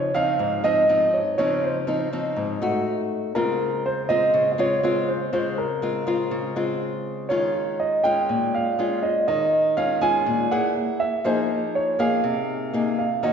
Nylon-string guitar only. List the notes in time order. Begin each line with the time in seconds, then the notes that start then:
Already playing: C#3 F3 C4 D#4
0.14 F3 C4 D#4
0.39 G#2
0.64 F3 C4 D#4
0.89 F3 C4 D#4
1.38 C#3 F3 C4 D#4
1.87 F3 C4 D#4
2.13 F3 C4 D#4
2.37 G#2
2.62 A3 D#4 F#4
3.35 C#3 G#3 C4 F4
4.09 G#3 C4 F4
4.34 C#3
4.58 G#3 C4 F4
4.83 G#3 C4 F4
5.33 C#3 G#3 C4 F4
5.82 G#3 C4 F4
6.07 G#3 C4 F4
6.31 C#3
6.56 G#3 C4 F4
7.30 D#3 G#3 C#4 F4
8.04 G#3 C#4 F4
8.29 A#2
8.79 G#3 C#4 F4
9.28 D#3
9.77 G#3 C#4 F4
10.01 G#3 C#4 F4
10.26 A#2
10.52 A#3 E4 G#4
11.24 F3 A#3 D#4 G#4
11.99 A#3 D#4 G#4
12.24 C3
12.73 A#3 D#4 G#4
13.23 D#3 A#3 C#4 F#4